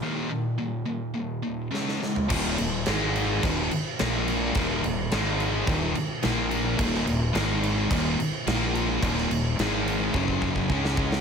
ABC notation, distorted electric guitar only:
X:1
M:4/4
L:1/8
Q:1/4=107
K:Ebm
V:1 name="Distorted electric guitar" clef=bass
[E,,B,,E,] [E,,B,,] [E,,B,,] [E,,B,,] [E,,B,,] [E,,B,,] [D,A,D] [D,A,] | [E,,B,,E,] [E,,B,,] [A,,E,A,]2 [E,,B,,E,] z [B,,F,B,]2 | [E,,B,,E,] [E,,B,,] [A,,E,A,]2 [E,,B,,E,] z [B,,F,B,]2 | [E,,B,,E,] [E,,B,,] [A,,E,A,]2 [E,,B,,E,] z [B,,F,B,]2 |
[E,,B,,E,] [E,,B,,] [A,,E,A,]2 [G,,D,G,]2 [D,A,D]2 |]